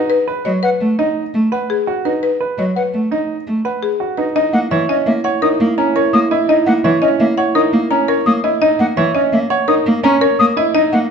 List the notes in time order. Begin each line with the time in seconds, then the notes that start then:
Already playing: D#4
0.10 B4
0.28 B4
0.45 F#3 C#5 D#5
0.63 B4 F#5
0.81 A3
0.99 D#4 D#5
1.34 A3
1.52 B4 F#5
1.70 G#4
1.87 F#4
2.05 D#4 B4 D#5
2.23 B4
2.40 B4
2.58 F#3 C#5 D#5
2.76 B4 F#5
2.94 A3
3.11 D#4 D#5
3.47 A3
3.65 B4 F#5
3.83 G#4
4.00 F#4
4.18 D#4 B4 D#5
4.36 D#4 E4 D#5
4.53 A#3 F#5
4.71 E3 C#5 E5
4.89 C#4 D#5
5.06 A#3 E5
5.24 C#5 F#5
5.42 D#4 A#4 D#6
5.60 A#3
5.78 C#4 A#5
5.96 A#4 C#5
6.13 A#3 D#6
6.31 E4 D#5
6.49 D#4 D#5
6.66 A#3 F#5
6.84 E3 C#5 E5
7.02 C#4 D#5
7.20 A#3 E5
7.38 C#5 F#5
7.55 D#4 A#4 D#6
7.73 A#3
7.91 C#4 A#5
8.08 A#4 C#5
8.26 A#3 D#6
8.44 E4 D#5
8.62 D#4 D#5
8.79 A#3 F#5
8.97 E3 C#5 E5
9.15 C#4 D#5
9.33 A#3 E5
9.50 C#5 F#5
9.68 D#4 A#4 D#6
9.86 A#3
10.04 C#4 A#5
10.21 A#4 C#5
10.39 A#3 D#6
10.57 E4 D#5
10.75 D#4 D#5
10.92 A#3 F#5